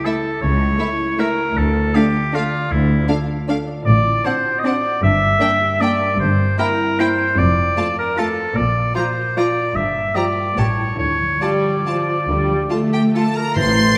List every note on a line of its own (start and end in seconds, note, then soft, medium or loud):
0.00 0.41 C#3 soft
0.00 0.59 A3 soft
0.00 0.78 E4 soft
0.05 0.14 A3 soft
0.05 0.13 E4 soft
0.05 0.41 A4 medium
0.05 1.17 E5 soft
0.05 0.14 E5 soft
0.25 1.37 A4 soft
0.42 0.73 C#2 soft
0.42 0.72 C#2 soft
0.42 1.59 C#3 soft
0.42 1.21 C#5 medium
0.61 0.98 A3 soft
0.79 0.87 A3 soft
0.79 0.87 E4 soft
0.79 0.87 E5 soft
0.99 4.89 A3 soft
1.18 1.27 A3 soft
1.18 1.27 E4 soft
1.18 1.59 A#4 medium
1.18 1.58 E5 soft
1.18 1.27 E5 soft
1.38 2.13 A4 soft
1.56 1.88 D2 medium
1.56 1.87 D2 medium
1.56 2.70 D3 soft
1.56 1.97 A4 medium
1.75 2.88 D4 soft
1.95 2.03 A3 soft
1.95 2.03 D4 soft
1.95 3.08 F4 soft
1.95 2.36 G4 medium
1.95 2.03 F5 soft
2.15 3.28 A4 soft
2.34 2.42 A3 soft
2.34 2.42 D4 soft
2.34 2.73 F4 medium
2.34 3.47 F5 soft
2.34 2.42 F5 soft
2.53 3.66 D5 soft
2.71 3.02 D2 medium
2.71 3.01 D2 medium
2.71 3.88 D3 soft
2.71 3.09 E4 medium
2.89 4.23 D4 soft
3.08 3.17 A3 soft
3.08 3.17 D4 soft
3.08 3.88 F4 soft
3.08 3.16 F5 soft
3.29 5.04 A4 soft
3.48 3.57 A3 soft
3.48 3.56 D4 soft
3.48 3.88 F5 soft
3.48 3.57 F5 soft
3.67 4.63 D5 soft
3.86 4.17 A1 medium
3.86 4.16 A2 medium
3.86 5.04 A2 soft
3.86 4.27 D5 medium
4.05 5.04 C4 soft
4.25 4.33 C4 soft
4.25 4.33 D4 soft
4.25 5.40 D4 soft
4.25 4.60 C5 medium
4.25 4.33 F#5 soft
4.45 5.04 F#4 soft
4.59 4.67 D#5 medium
4.64 4.72 C4 soft
4.64 4.73 D4 soft
4.64 5.80 D5 medium
4.64 5.03 D5 medium
4.64 4.74 F#5 soft
4.84 5.04 C5 soft
5.02 5.33 G1 medium
5.02 5.32 G2 medium
5.02 6.18 G2 medium
5.02 5.82 E5 medium
5.21 7.39 A#3 soft
5.40 5.48 A#3 soft
5.40 5.48 D4 soft
5.40 5.49 G5 soft
5.61 7.39 G4 soft
5.80 5.88 A#3 soft
5.80 5.88 D4 soft
5.80 6.19 D5 medium
5.80 6.21 D5 soft
5.80 5.90 G5 soft
6.00 6.79 A#4 soft
6.19 6.50 G1 medium
6.19 6.50 G2 medium
6.19 7.39 G2 medium
6.19 6.58 C5 medium
6.39 7.57 C4 soft
6.58 6.66 A#3 soft
6.58 6.66 E4 soft
6.58 7.40 E4 soft
6.58 7.01 A#4 medium
6.58 6.67 G5 soft
6.80 7.40 A#4 soft
6.99 7.07 A#3 soft
6.99 7.07 E4 soft
6.99 7.39 C5 medium
6.99 7.40 E5 soft
6.99 7.07 G5 soft
7.20 8.38 C5 soft
7.38 7.69 F1 medium
7.38 7.69 F2 medium
7.38 8.58 F2 soft
7.38 7.98 D5 medium
7.58 8.58 C4 soft
7.77 7.85 A3 soft
7.77 7.85 F4 soft
7.77 8.95 F4 soft
7.77 7.85 A5 soft
7.99 8.59 A4 soft
7.99 8.20 A#4 medium
8.17 8.26 A3 soft
8.17 8.25 F4 soft
8.17 8.58 A4 medium
8.17 9.37 F5 soft
8.17 8.26 A5 soft
8.39 8.58 C5 soft
8.56 8.87 A#1 medium
8.56 8.87 A#2 medium
8.56 9.78 A#2 soft
8.56 8.95 D5 medium
8.77 9.94 A#3 soft
8.95 9.04 F3 soft
8.95 9.03 F4 soft
8.95 10.14 F4 soft
8.95 9.39 C5 medium
8.95 9.04 A#5 soft
9.17 9.56 A#4 soft
9.37 9.45 F3 soft
9.37 9.45 F4 soft
9.37 9.77 D5 medium
9.37 10.60 F5 soft
9.37 9.46 A#5 soft
9.75 10.07 G1 medium
9.75 10.06 G2 medium
9.75 10.59 G2 soft
9.75 10.17 E5 medium
9.95 10.59 A#3 soft
10.15 10.23 F3 soft
10.15 10.59 F4 soft
10.15 10.24 G4 soft
10.15 10.59 D5 medium
10.15 10.23 A#5 soft
10.37 10.59 A#4 soft
10.57 10.91 A1 medium
10.57 10.90 A2 medium
10.57 11.01 A2 soft
10.57 10.65 E3 soft
10.57 10.66 G4 soft
10.57 10.98 C#5 medium
10.57 10.65 A5 soft
10.79 11.01 E4 soft
10.79 11.64 A4 soft
10.99 11.33 D2 medium
10.99 11.33 D3 medium
10.99 12.27 D3 soft
10.99 11.43 C#5 medium
11.20 12.47 F3 soft
11.41 11.83 G3 medium
11.41 11.50 F4 soft
11.41 12.07 F4 soft
11.41 12.75 D5 medium
11.41 11.49 A5 soft
11.65 12.92 A4 soft
11.86 12.28 F3 soft
11.86 11.95 F4 soft
11.86 13.14 F5 soft
11.86 11.94 A5 soft
12.09 12.70 F4 soft
12.28 12.61 D2 soft
12.28 12.61 D3 medium
12.28 13.58 D3 soft
12.28 12.69 G3 medium
12.49 13.58 F3 soft
12.70 13.55 A3 soft
12.70 12.79 F4 soft
12.70 13.36 F4 soft
12.70 12.78 A5 soft
12.92 13.02 G4 soft
12.92 13.97 A4 soft
12.92 13.01 G5 soft
13.15 13.24 F4 soft
13.15 13.25 A4 soft
13.15 13.59 F5 soft
13.15 13.36 A5 soft
13.36 13.58 F4 soft
13.36 13.58 A#4 soft
13.36 13.56 A#5 medium
13.56 13.90 A1 medium
13.56 13.98 A2 medium
13.56 13.90 A2 medium
13.56 13.98 A2 soft
13.56 13.98 E3 soft
13.56 13.98 C5 medium
13.56 13.97 C6 medium
13.56 13.98 A6 soft
13.77 13.98 A3 soft